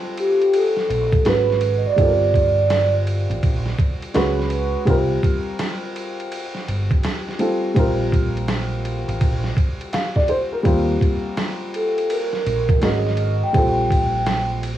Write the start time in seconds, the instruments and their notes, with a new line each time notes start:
Already playing: upright piano G3 C4 F4 A4
0.17 vibraphone G4, ride
0.42 ride
0.54 vibraphone A4, ride
0.77 snare
0.89 fretless electric bass A#1, ride
1.13 kick, ride
1.25 fretless electric bass G#1, upright piano G#3 C#4 F#4 B4, vibraphone B4, snare, hi-hat pedal, ride
1.50 snare
1.61 ride
1.78 vibraphone D#5
1.86 vibraphone D5
1.96 fretless electric bass G1, upright piano G3 C4 F4 A4, kick, ride
2.06 upright piano A#4
2.34 kick, ride
2.70 snare, hi-hat pedal, ride
3.07 ride
3.30 fretless electric bass A1, ride
3.43 fretless electric bass A#1, kick, ride
3.66 snare
3.78 kick, ride
4.02 ride
4.14 fretless electric bass C#2, upright piano G#3 C#4 F#4 B4, snare, hi-hat pedal, ride
4.39 snare
4.50 ride
4.85 fretless electric bass C2, upright piano G3 C4 F4 A#4, kick, ride
5.23 kick, ride
5.59 snare, hi-hat pedal, ride
5.96 ride
6.20 ride
6.32 ride
6.55 snare
6.68 fretless electric bass G1, ride
6.91 kick, ride
7.04 snare, hi-hat pedal, ride
7.29 snare
7.39 upright piano G3 C4 F4 A4, ride
7.74 fretless electric bass A#1, upright piano G3 C4 F4 A#4, kick, ride
8.12 kick, ride
8.37 ride
8.48 snare, hi-hat pedal, ride
8.85 ride
9.08 fretless electric bass A1, ride
9.21 fretless electric bass A#1, kick, ride
9.44 snare
9.57 kick, ride
9.81 ride
9.93 upright piano F5, snare, hi-hat pedal, ride
10.16 upright piano D5, kick, snare
10.28 upright piano C5, ride
10.52 upright piano A#4
10.63 fretless electric bass D#2, upright piano G3 A#3 C4 F4, kick, ride
11.01 kick, ride
11.37 snare, hi-hat pedal, ride
11.74 vibraphone A4, ride
11.98 ride
12.10 vibraphone A#4, ride
12.33 snare
12.46 fretless electric bass A#1, ride
12.69 kick, ride
12.81 fretless electric bass G#1, upright piano G#3 C#4 F#4 A#4, vibraphone D#5, snare, hi-hat pedal, ride
13.07 snare
13.17 ride
13.43 vibraphone G5
13.53 fretless electric bass A#1, upright piano G3 C4 F4 A4, kick, ride
13.91 kick, ride
14.26 snare, hi-hat pedal, ride
14.63 ride